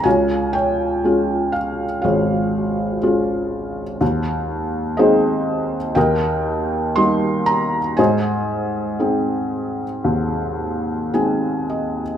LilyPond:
<<
  \new Staff \with { instrumentName = "Felt piano" } { \time 4/4 \key aes \major \tempo 4 = 60 << { aes''8 g''4 f''8 f''4 r4 | r4 ees''4 g''4 c'''8 bes''8 | aes''2. aes''8 ees''8 | } \\ { <des'' f''>8 des''4. <aes' des''>2 | r4 <aes' c''>4 <bes' ees''>2 | <c'' ees''>2. r4 | } >> }
  \new Staff \with { instrumentName = "Felt piano" } { \time 4/4 \key aes \major des,4 <aes des' f'>4 aes,,4 <aes des' f'>4 | ees,4 <aes c' ees'>4 ees,4 <g bes ees'>4 | aes,4 <aes c' ees'>4 ees,4 <aes c' ees'>4 | }
>>